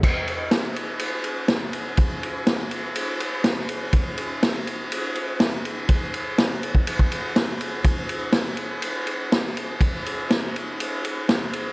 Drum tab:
CC |x---------------|----------------|----------------|----------------|
RD |--x-x-x-x-x-x-x-|x-x-x-x-x-x-x-x-|x-x-x-x-x-x-x-x-|x-x-x-x-x-x-x-x-|
SD |----o-------o---|----o-------o---|----o-------o---|----o-------o---|
BD |o---------------|o---------------|o---------------|o------o-o------|

CC |----------------|----------------|
RD |x-x-x-x-x-x-x-x-|x-x-x-x-x-x-x-x-|
SD |----o-------o---|----o-------o---|
BD |o---------------|o---------------|